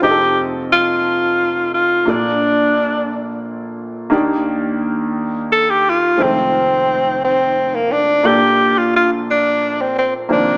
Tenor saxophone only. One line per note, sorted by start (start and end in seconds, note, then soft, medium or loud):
0.03 0.41 G4 medium
0.72 1.70 F4 medium
1.74 2.11 F4 medium
2.10 3.46 D4 medium
5.52 5.71 A4 medium
5.70 5.91 G4 medium
5.89 6.24 F4 medium
6.22 7.24 C4 medium
7.24 7.76 C4 medium
7.75 7.94 A#3 medium
7.92 8.28 D4 medium
8.26 8.80 G4 medium
8.78 8.94 F4 medium
8.96 9.11 F4 medium
9.31 9.83 D4 medium
9.81 9.97 C4 medium
9.99 10.13 C4 medium
10.32 10.57 D4 medium